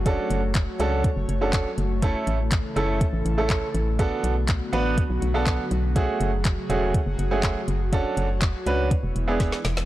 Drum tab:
HH |x-x-x-x-x-x-x-x-|x-x-x-x-x-x-x-x-|x-x-x-x-x-x-x-x-|x-x-x-x-x-x-x-x-|
CP |----x-------x---|----x-------x---|----x-------x---|----x-------x---|
SD |----------------|----------------|----------------|----------------|
BD |o---o---o---o---|o---o---o---o---|o---o---o---o---|o---o---o---o---|

HH |x-x-x-x-x-x-x-x-|
CP |----x-----------|
SD |------------oooo|
BD |o---o---o---o---|